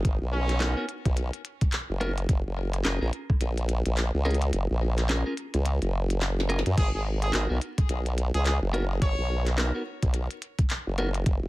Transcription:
0.05 G#1, kick, closed hi-hat
0.22 B1
0.33 C#4
0.49 cross-stick, clap, closed hi-hat
0.60 B3 D#4 F#4 A#4, clap, closed hi-hat
0.77 B3 D#4 F#4 A#4
0.89 closed hi-hat
1.05 B1, kick, cross-stick, closed hi-hat
1.17 closed hi-hat
1.33 closed hi-hat
1.45 closed hi-hat
1.61 kick, closed hi-hat
1.73 clap, closed hi-hat
1.90 F#1
2.00 B3 D#4 F#4 A#4, closed hi-hat
2.18 closed hi-hat
2.29 F#1, kick, closed hi-hat
2.46 F#1
2.73 cross-stick, closed hi-hat
2.84 F#1 C#4 F4 G#4 A#4, clap, closed hi-hat
3.01 A#1 C#4 F4 G#4 A#4
3.13 closed hi-hat
3.30 kick, cross-stick
3.41 A#1, closed hi-hat
3.58 closed hi-hat
3.69 closed hi-hat
3.86 A#1, closed hi-hat
3.97 clap, closed hi-hat
4.14 C#2
4.25 C#4 F4 G#4 A#4, cross-stick, closed hi-hat
4.31 closed hi-hat
4.34 closed hi-hat
4.42 closed hi-hat
4.53 F#1, closed hi-hat
4.71 A#1
4.98 cross-stick, clap, closed hi-hat
5.09 C#4 F4 G#4 A#4, clap, closed hi-hat
5.26 C#4 F4 G#4 A#4
5.37 closed hi-hat
5.54 C#2, cross-stick, closed hi-hat
5.65 closed hi-hat
5.82 F#1, closed hi-hat
6.10 closed hi-hat
6.22 snare, clap, closed hi-hat
6.40 snare
6.49 C#4 F4 G#4 A#4, closed hi-hat
6.59 snare
6.66 F#2, closed hi-hat
6.78 G#1 G#4, kick, closed hi-hat, crash
6.95 G#1 G#4
7.22 G#4, cross-stick, closed hi-hat
7.33 G#1 B3 D#4 F#4 G#4 A#4, clap, closed hi-hat
7.49 B1 B3 D#4 F#4 A#4
7.61 closed hi-hat
7.78 kick, cross-stick, closed hi-hat
7.89 B1, closed hi-hat
8.06 closed hi-hat
8.18 closed hi-hat
8.34 C#2 G#4, closed hi-hat
8.46 G#4, clap, closed hi-hat
8.62 F#1
8.73 B3 D#4 F#4 A#4, cross-stick, closed hi-hat
9.02 G#1 C#5, kick, closed hi-hat
9.18 B1
9.47 cross-stick, clap, closed hi-hat
9.57 B3 D#4 F#4 A#4, clap, closed hi-hat
9.74 B3 D#4 F#4 A#4
10.03 B1, kick, cross-stick, closed hi-hat
10.14 closed hi-hat
10.31 closed hi-hat
10.42 closed hi-hat
10.59 kick, closed hi-hat
10.70 clap, closed hi-hat
10.87 F#1
10.98 B3 D#4 F#4 A#4, closed hi-hat
11.14 closed hi-hat
11.26 F#1, kick, closed hi-hat
11.43 F#1

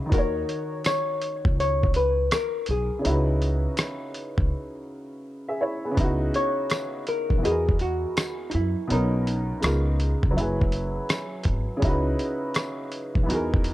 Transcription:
Already playing: C#3 C#4 D#4 E4 F#4 G#4 B4
0.06 D#3 D#4
0.12 D#2 F#4 A#4, kick, closed hi-hat
0.18 C#5
0.49 closed hi-hat
0.84 C#5, cross-stick, closed hi-hat, tambourine
1.22 closed hi-hat
1.45 C#2, kick
1.60 C#5, closed hi-hat
1.83 kick
1.94 B4, closed hi-hat
2.31 A#4, cross-stick, closed hi-hat, tambourine
2.66 B1, closed hi-hat
2.71 G#4
2.99 C#3 C#4
3.04 C#2 D#4 E4, closed hi-hat
3.09 F#4 B4
3.42 closed hi-hat
3.77 cross-stick, closed hi-hat, tambourine
4.14 closed hi-hat
4.38 C#2, kick
5.48 G#4 E5
5.61 E4 C#5
5.85 B3 G#4
5.91 C#3 B3
5.97 C#2 D#4 E4, kick, closed hi-hat
6.03 F#4
6.34 C#5, closed hi-hat
6.70 cross-stick, closed hi-hat, tambourine
7.07 A#4, closed hi-hat
7.30 B1, kick
7.38 E3 B3
7.43 E2 F#4 G#4 D#5, closed hi-hat
7.47 G#4 A#4
7.69 kick
7.79 F#4, closed hi-hat
8.17 cross-stick, closed hi-hat, tambourine
8.50 D#4, closed hi-hat
8.54 F#2 E4
8.87 B1 B2 B3 C#4, closed hi-hat
8.91 D#4 A#4
9.27 closed hi-hat
9.60 C#2 C#3 G#3 B3 D#4, cross-stick, closed hi-hat, tambourine
9.65 F4 A#4
10.00 closed hi-hat
10.23 C#2, kick
10.31 F#3 C#4
10.37 F#1 E4 G#4, closed hi-hat
10.43 B4
10.61 kick
10.72 closed hi-hat
11.09 cross-stick, closed hi-hat, tambourine
11.44 G#1, kick, closed hi-hat
11.77 C#3 C#4
11.82 C#2 D#4 E4, kick, closed hi-hat
11.87 F#4 B4
12.19 closed hi-hat
12.54 cross-stick, closed hi-hat, tambourine
12.92 closed hi-hat
13.15 B1, kick
13.23 E3 B3
13.28 E2 D#4 F#4, closed hi-hat
13.33 G#4 A#4
13.54 kick
13.64 closed hi-hat

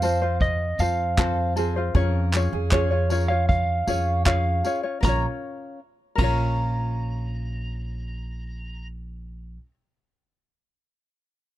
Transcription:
Already playing: F2 F5
0.02 C4 F4 A4 C5, tambourine
0.22 C4 F4 C5
0.41 D#5, kick
0.79 F2 C4 F4 A4 C5 F5, tambourine
1.18 C4 F4 A4 C5, kick, clap
1.56 C4 F4 G#4 A4 C5, tambourine
1.76 C4 F4 C5
1.95 F2 C#4 F4 G#4 A#4 C#5, kick
2.33 C#4 F4 G#4 C#5, clap, tambourine
2.52 F2 G#4
2.71 C#4 F4 G#4 C#5, kick, clap
2.91 C#4 F4 C#5
3.10 C#4 F4 G#4 A#4 C#5, tambourine
3.28 C#4 F4 C#5 F5
3.49 F5, kick
3.87 F2 C#4 F4 G#4 C#5, tambourine
4.25 C#4 F4 G#4 C#5 F5, kick, clap
4.64 C#4 F4 G#4 C#5, tambourine
4.83 C#4 F4 C#5
5.01 A#1 C#4 A#4 C#5, kick, snare
5.05 F4 C#5 A#5
6.15 A#1 C#4 A#4 C#5 A#5, kick, crash
6.21 F4 C#5

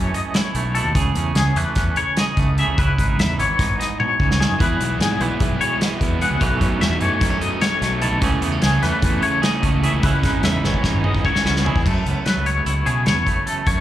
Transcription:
Already playing: E3 A3 C#4 E4 C#5
0.14 F#2 D#5, closed hi-hat
0.34 E4 C#5, snare, closed hi-hat
0.54 B1 A3, closed hi-hat
0.75 B2 E4 A4, closed hi-hat
0.84 D#2
0.95 C#2 C#3 G#4, kick, closed hi-hat
1.15 E2 C#4, closed hi-hat
1.35 C#2 G#4, snare, closed hi-hat
1.55 E2 E3 A3 B4, closed hi-hat
1.75 E2 C#4, kick, snare, closed hi-hat
1.96 C#3 C#5, closed hi-hat
2.17 G#4 D#5, snare, closed hi-hat
2.37 C#2 A3, kick, closed hi-hat
2.58 C#3 G#4 E5, closed hi-hat
2.67 C#2
2.78 C#2 C#3 E4 B4, kick, closed hi-hat
2.98 G#1 D#4, kick, closed hi-hat
3.18 E2 E5, snare, closed hi-hat
3.38 G#1 E3 B3 C#5, closed hi-hat
3.59 G#1 D#4, kick, snare, closed hi-hat
3.79 G#2 D#5, snare, closed hi-hat
4.00 B2 C#5, high tom
4.20 C#2 C#3, kick
4.31 snare
4.40 D#3 G#4, snare
4.50 F#2
4.59 E2 E3 G#3 B3 E4 G#4 B4, kick, closed hi-hat
4.79 B1 G#3 B3 E4, closed hi-hat
5.00 G#2 E3 G#3 B3 E4 G#4, snare, closed hi-hat
5.20 B1 E3 G#3 B3 E4 B4, closed hi-hat
5.40 B1 E3 G#3 B3 E4, kick, closed hi-hat
5.60 B2 E3 G#3 B3 E4 C#5, closed hi-hat
5.79 E3 G#3 B3 E4 D#5, snare, closed hi-hat
6.00 E2 G#3 B3 E4, kick, closed hi-hat
6.20 E2 E3 G#3 B3 E4 G#4 F#5, closed hi-hat
6.31 C#2
6.39 B1 B2 E3 F#3 A3 C#4 D#4 B4, kick, closed hi-hat
6.60 F#2 F#3 A3 C#4 D#4, kick, closed hi-hat
6.80 E2 B2 F#3 A3 D#4 E5, snare, closed hi-hat
7.00 F#2 B2 E3 F#3 A3 D#4 C#5, closed hi-hat
7.20 F#2 B2 F#3 A3 B3 D#4, kick, snare, closed hi-hat
7.30 C#4
7.41 F#2 B2 F#3 A3 D#4 D#5, closed hi-hat
7.60 B2 F#3 A3 D#4 C#5, snare, closed hi-hat
7.81 B1 F#3 A3 D#4, snare, closed hi-hat
8.00 B2 F#3 A3 D#4 E4 A4, closed hi-hat
8.11 B1
8.20 C#2 C#3 E3 A3 C#4, kick, closed hi-hat
8.24 G#4
8.41 E2 E3 A3 B3 C#4, closed hi-hat
8.52 C#4
8.62 C#2 C#3 E3 A3 C#4 G#4, snare, closed hi-hat
8.81 E2 C#3 E3 A3 C#4 B4, snare, closed hi-hat
9.01 E2 C#3 E3 A3 C#4, kick, closed hi-hat
9.21 C#3 E3 A3 C#4 C#5, closed hi-hat
9.25 C#3
9.42 C#3 E3 A3 G#4 D#5, snare, closed hi-hat
9.46 C#4
9.63 C#2 E3 A3 C#4, kick, closed hi-hat
9.83 C#3 E3 A3 C#4 G#4 E5, closed hi-hat
9.93 C#2
10.03 C#2 C#3 E3 G#3 C#4 E4 B4, kick, closed hi-hat
10.23 G#1 E3 G#3 C#4 D#4, kick, snare, closed hi-hat
10.42 E2 C#3 E3 G#3 E5, snare, closed hi-hat
10.47 C#4
10.63 G#1 C#3 E3 G#3 B3 C#4 C#5, snare
10.74 kick
10.83 G#1 C#3 E3 G#3 C#4 D#4, kick, snare
10.94 mid tom
11.04 G#2 C#3 E3 G#3 C#4 D#5, mid tom
11.15 kick
11.24 C#3 E3 G#3 C#4 E4 C#5, kick
11.35 F#4, snare
11.45 C#2 E3 G#3 B3 C#4, snare
11.56 snare
11.64 C#3 E3 G#3 C#4 E4 G#4, floor tom
11.75 E2, kick
11.85 F#2 A3 A4, kick, crash
12.06 C#2 B3, closed hi-hat
12.26 F#3 A3 B4, snare, closed hi-hat
12.36 C#2
12.46 B3 C#5, closed hi-hat
12.66 C#2 E4, closed hi-hat
12.85 B2 C#3 A3 G#4, closed hi-hat
13.06 E2 B3 C#5, snare, closed hi-hat
13.27 A3, kick, closed hi-hat
13.46 F#2 A3 A4, closed hi-hat
13.66 F#2 A3 C#5, kick, closed hi-hat

